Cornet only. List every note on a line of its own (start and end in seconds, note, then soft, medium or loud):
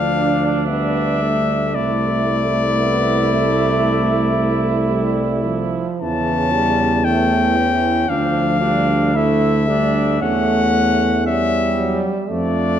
0.00 0.66 F5 loud
0.67 1.76 E5 loud
1.75 5.74 D5 loud
6.01 7.06 A5 loud
7.05 8.11 G5 loud
8.09 9.18 F5 loud
9.16 10.21 E5 loud
10.22 11.24 F#5 loud
11.26 12.03 E5 loud
12.28 12.79 D5 loud